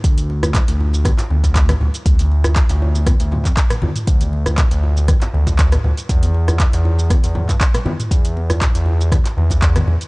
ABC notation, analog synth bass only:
X:1
M:4/4
L:1/16
Q:"Swing 16ths" 1/4=119
K:Ephr
V:1 name="Analog synth bass" clef=bass
D,,4 z D,,3 z2 D,,3 z D,, z | D,,4 z D,,3 z D,,2 F,, z2 D,, z | D,,4 z D,,3 z2 D,,3 z D,, z | E,,4 z E,,3 z E,,2 G,, z2 E,, z |
E,,4 z E,,3 z2 E,,3 z E,, z |]